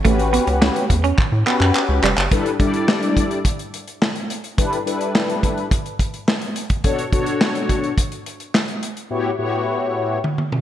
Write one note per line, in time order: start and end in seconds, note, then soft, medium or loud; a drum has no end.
0.05 0.39 A1 loud
0.05 0.17 A3 loud
0.05 0.84 C#4 medium
0.05 0.84 F#4 medium
0.05 0.84 G4 medium
0.05 0.84 B4 loud
0.05 kick loud
0.05 closed hi-hat medium
0.19 closed hi-hat medium
0.33 0.45 B3 medium
0.33 closed hi-hat medium
0.47 0.70 C#2 medium
0.47 muted clean electric guitar stroke soft
0.47 closed hi-hat soft
0.62 0.74 C#4 medium
0.62 snare loud
0.62 clap medium
0.76 closed hi-hat medium
0.90 1.13 E2 medium
0.90 muted clean electric guitar stroke soft
0.90 kick medium
0.90 closed hi-hat medium
1.04 1.16 C#4 medium
1.04 closed hi-hat soft
1.18 1.24 A2 medium
1.18 kick loud
1.18 clap medium
1.32 1.44 A2 loud
1.46 1.58 B3 medium
1.46 2.06 C#4 medium
1.46 2.06 F#4 medium
1.46 2.06 G4 medium
1.46 2.06 B4 loud
1.46 clap medium
1.60 1.72 F#2 loud
1.60 clap medium
1.75 clap medium
1.89 2.00 C#2 loud
2.03 2.14 F1 medium
2.03 2.15 G3 medium
2.03 clap loud
2.17 2.29 F#1 loud
2.17 clap loud
2.31 2.51 G3 medium
2.31 2.51 D4 medium
2.31 2.51 E4 medium
2.31 2.51 A4 medium
2.31 2.51 B4 medium
2.31 kick loud
2.31 closed hi-hat medium
2.46 closed hi-hat soft
2.59 3.39 G3 loud
2.59 3.39 D4 medium
2.59 3.39 E4 medium
2.59 3.39 A4 medium
2.59 3.39 D5 loud
2.59 kick loud
2.59 closed hi-hat medium
2.74 closed hi-hat soft
2.88 snare loud
2.88 clap medium
3.03 closed hi-hat soft
3.17 kick medium
3.17 closed hi-hat medium
3.31 closed hi-hat soft
3.45 kick loud
3.45 closed hi-hat medium
3.59 closed hi-hat soft
3.74 closed hi-hat medium
3.88 closed hi-hat medium
4.02 snare loud
4.02 clap medium
4.15 closed hi-hat soft
4.30 closed hi-hat medium
4.44 closed hi-hat medium
4.57 4.77 G3 medium
4.57 4.78 D4 medium
4.57 4.78 E4 medium
4.57 4.78 A4 medium
4.57 4.78 B4 medium
4.57 kick loud
4.57 closed hi-hat medium
4.73 closed hi-hat soft
4.86 5.65 G3 medium
4.86 5.65 D4 medium
4.86 5.65 E4 medium
4.86 5.65 A4 medium
4.86 5.65 B4 loud
4.86 closed hi-hat medium
5.01 closed hi-hat medium
5.15 snare loud
5.15 clap medium
5.29 closed hi-hat soft
5.43 kick medium
5.43 closed hi-hat medium
5.58 closed hi-hat soft
5.71 kick loud
5.71 closed hi-hat medium
5.86 closed hi-hat soft
5.99 kick medium
5.99 closed hi-hat medium
6.14 closed hi-hat soft
6.28 snare loud
6.28 clap medium
6.41 closed hi-hat soft
6.56 closed hi-hat medium
6.70 kick medium
6.70 closed hi-hat soft
6.84 7.04 B2 medium
6.84 7.04 D4 medium
6.84 7.04 F#4 medium
6.84 7.04 A4 medium
6.84 7.04 C#5 medium
6.84 kick loud
6.84 closed hi-hat medium
6.99 closed hi-hat soft
7.12 7.91 B2 medium
7.12 7.92 D4 medium
7.12 7.92 F#4 medium
7.12 7.92 A4 medium
7.12 7.92 C#5 medium
7.12 kick loud
7.12 closed hi-hat medium
7.26 closed hi-hat medium
7.41 snare loud
7.41 clap medium
7.55 closed hi-hat medium
7.69 kick medium
7.69 closed hi-hat medium
7.84 closed hi-hat soft
7.98 kick loud
7.98 closed hi-hat medium
8.12 closed hi-hat soft
8.26 closed hi-hat medium
8.40 closed hi-hat soft
8.54 snare loud
8.54 clap medium
8.68 closed hi-hat soft
8.83 closed hi-hat medium
8.97 closed hi-hat soft
9.10 9.30 A2 medium
9.10 9.30 B3 medium
9.10 9.30 E4 medium
9.10 9.30 F#4 medium
9.10 9.31 G4 medium
9.10 9.31 C#5 medium
9.38 10.18 A2 medium
9.38 10.18 B3 medium
9.38 10.18 E4 medium
9.38 10.18 F#4 medium
9.38 10.18 G4 medium
9.38 10.18 C#5 loud
10.24 high tom medium
10.38 high tom medium
10.52 mid tom medium